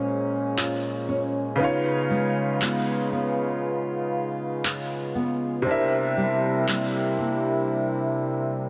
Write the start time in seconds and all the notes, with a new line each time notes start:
Already playing: A#2 G#3 A#3 C#4 F4 G#4 C5
0.58 F4, clap
1.08 C#4
1.56 C#3 B3 F4
1.60 D#4 F4
1.64 C#5
2.10 G#3
2.61 G#3 B3 F4, clap
3.12 B3
4.64 F4, clap
5.15 B3
5.62 C3 G3 A#3 C4 E4
5.67 D4 E4 A#4
5.71 E5
6.17 G3
6.68 G3 A#3 E4, clap
7.18 A#3